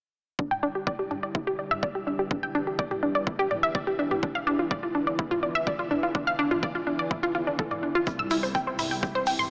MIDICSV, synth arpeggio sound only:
0, 0, Header, 1, 2, 480
1, 0, Start_track
1, 0, Tempo, 480000
1, 389, Time_signature, 4, 2, 24, 8
1, 9500, End_track
2, 0, Start_track
2, 0, Title_t, "Synth arpeggio sound"
2, 0, Program_c, 0, 84
2, 388, Note_on_c, 0, 62, 80
2, 452, Note_off_c, 0, 62, 0
2, 511, Note_on_c, 0, 79, 92
2, 572, Note_off_c, 0, 79, 0
2, 628, Note_on_c, 0, 62, 94
2, 666, Note_off_c, 0, 62, 0
2, 752, Note_on_c, 0, 67, 72
2, 842, Note_off_c, 0, 67, 0
2, 868, Note_on_c, 0, 74, 99
2, 932, Note_off_c, 0, 74, 0
2, 991, Note_on_c, 0, 67, 75
2, 1051, Note_off_c, 0, 67, 0
2, 1108, Note_on_c, 0, 62, 71
2, 1203, Note_off_c, 0, 62, 0
2, 1232, Note_on_c, 0, 74, 74
2, 1292, Note_off_c, 0, 74, 0
2, 1349, Note_on_c, 0, 64, 80
2, 1412, Note_off_c, 0, 64, 0
2, 1471, Note_on_c, 0, 67, 101
2, 1562, Note_off_c, 0, 67, 0
2, 1588, Note_on_c, 0, 74, 71
2, 1626, Note_off_c, 0, 74, 0
2, 1711, Note_on_c, 0, 76, 95
2, 1771, Note_off_c, 0, 76, 0
2, 1828, Note_on_c, 0, 74, 96
2, 1892, Note_off_c, 0, 74, 0
2, 1951, Note_on_c, 0, 67, 75
2, 2011, Note_off_c, 0, 67, 0
2, 2068, Note_on_c, 0, 62, 70
2, 2163, Note_off_c, 0, 62, 0
2, 2191, Note_on_c, 0, 67, 73
2, 2281, Note_off_c, 0, 67, 0
2, 2308, Note_on_c, 0, 62, 80
2, 2371, Note_off_c, 0, 62, 0
2, 2431, Note_on_c, 0, 79, 94
2, 2491, Note_off_c, 0, 79, 0
2, 2548, Note_on_c, 0, 62, 96
2, 2586, Note_off_c, 0, 62, 0
2, 2671, Note_on_c, 0, 67, 72
2, 2761, Note_off_c, 0, 67, 0
2, 2788, Note_on_c, 0, 74, 98
2, 2851, Note_off_c, 0, 74, 0
2, 2911, Note_on_c, 0, 67, 73
2, 2971, Note_off_c, 0, 67, 0
2, 3028, Note_on_c, 0, 62, 72
2, 3123, Note_off_c, 0, 62, 0
2, 3151, Note_on_c, 0, 74, 77
2, 3211, Note_off_c, 0, 74, 0
2, 3268, Note_on_c, 0, 64, 74
2, 3332, Note_off_c, 0, 64, 0
2, 3391, Note_on_c, 0, 67, 102
2, 3481, Note_off_c, 0, 67, 0
2, 3509, Note_on_c, 0, 74, 72
2, 3546, Note_off_c, 0, 74, 0
2, 3632, Note_on_c, 0, 76, 99
2, 3692, Note_off_c, 0, 76, 0
2, 3748, Note_on_c, 0, 74, 94
2, 3812, Note_off_c, 0, 74, 0
2, 3872, Note_on_c, 0, 67, 77
2, 3932, Note_off_c, 0, 67, 0
2, 3989, Note_on_c, 0, 62, 72
2, 4083, Note_off_c, 0, 62, 0
2, 4112, Note_on_c, 0, 67, 74
2, 4202, Note_off_c, 0, 67, 0
2, 4228, Note_on_c, 0, 62, 80
2, 4292, Note_off_c, 0, 62, 0
2, 4351, Note_on_c, 0, 77, 93
2, 4412, Note_off_c, 0, 77, 0
2, 4469, Note_on_c, 0, 62, 95
2, 4507, Note_off_c, 0, 62, 0
2, 4592, Note_on_c, 0, 65, 74
2, 4682, Note_off_c, 0, 65, 0
2, 4708, Note_on_c, 0, 74, 97
2, 4772, Note_off_c, 0, 74, 0
2, 4831, Note_on_c, 0, 65, 73
2, 4892, Note_off_c, 0, 65, 0
2, 4948, Note_on_c, 0, 62, 75
2, 5043, Note_off_c, 0, 62, 0
2, 5071, Note_on_c, 0, 74, 73
2, 5131, Note_off_c, 0, 74, 0
2, 5188, Note_on_c, 0, 64, 80
2, 5252, Note_off_c, 0, 64, 0
2, 5311, Note_on_c, 0, 65, 96
2, 5401, Note_off_c, 0, 65, 0
2, 5428, Note_on_c, 0, 74, 72
2, 5466, Note_off_c, 0, 74, 0
2, 5551, Note_on_c, 0, 76, 100
2, 5612, Note_off_c, 0, 76, 0
2, 5669, Note_on_c, 0, 74, 100
2, 5732, Note_off_c, 0, 74, 0
2, 5792, Note_on_c, 0, 65, 77
2, 5852, Note_off_c, 0, 65, 0
2, 5908, Note_on_c, 0, 62, 71
2, 6003, Note_off_c, 0, 62, 0
2, 6031, Note_on_c, 0, 65, 73
2, 6121, Note_off_c, 0, 65, 0
2, 6148, Note_on_c, 0, 62, 82
2, 6212, Note_off_c, 0, 62, 0
2, 6272, Note_on_c, 0, 77, 93
2, 6332, Note_off_c, 0, 77, 0
2, 6388, Note_on_c, 0, 62, 96
2, 6426, Note_off_c, 0, 62, 0
2, 6511, Note_on_c, 0, 65, 73
2, 6601, Note_off_c, 0, 65, 0
2, 6629, Note_on_c, 0, 74, 95
2, 6692, Note_off_c, 0, 74, 0
2, 6751, Note_on_c, 0, 65, 73
2, 6812, Note_off_c, 0, 65, 0
2, 6868, Note_on_c, 0, 62, 73
2, 6963, Note_off_c, 0, 62, 0
2, 6991, Note_on_c, 0, 74, 76
2, 7052, Note_off_c, 0, 74, 0
2, 7108, Note_on_c, 0, 64, 78
2, 7172, Note_off_c, 0, 64, 0
2, 7232, Note_on_c, 0, 65, 102
2, 7322, Note_off_c, 0, 65, 0
2, 7349, Note_on_c, 0, 65, 73
2, 7386, Note_off_c, 0, 65, 0
2, 7472, Note_on_c, 0, 62, 75
2, 7532, Note_off_c, 0, 62, 0
2, 7589, Note_on_c, 0, 69, 78
2, 7627, Note_off_c, 0, 69, 0
2, 7712, Note_on_c, 0, 74, 73
2, 7772, Note_off_c, 0, 74, 0
2, 7829, Note_on_c, 0, 62, 72
2, 7867, Note_off_c, 0, 62, 0
2, 7952, Note_on_c, 0, 65, 101
2, 7988, Note_off_c, 0, 65, 0
2, 8068, Note_on_c, 0, 64, 81
2, 8132, Note_off_c, 0, 64, 0
2, 8192, Note_on_c, 0, 88, 93
2, 8252, Note_off_c, 0, 88, 0
2, 8309, Note_on_c, 0, 64, 94
2, 8347, Note_off_c, 0, 64, 0
2, 8432, Note_on_c, 0, 72, 75
2, 8522, Note_off_c, 0, 72, 0
2, 8548, Note_on_c, 0, 79, 100
2, 8612, Note_off_c, 0, 79, 0
2, 8672, Note_on_c, 0, 72, 75
2, 8732, Note_off_c, 0, 72, 0
2, 8789, Note_on_c, 0, 64, 76
2, 8883, Note_off_c, 0, 64, 0
2, 8912, Note_on_c, 0, 79, 76
2, 8972, Note_off_c, 0, 79, 0
2, 9029, Note_on_c, 0, 67, 78
2, 9092, Note_off_c, 0, 67, 0
2, 9152, Note_on_c, 0, 72, 97
2, 9242, Note_off_c, 0, 72, 0
2, 9269, Note_on_c, 0, 79, 73
2, 9307, Note_off_c, 0, 79, 0
2, 9392, Note_on_c, 0, 84, 100
2, 9452, Note_off_c, 0, 84, 0
2, 9500, End_track
0, 0, End_of_file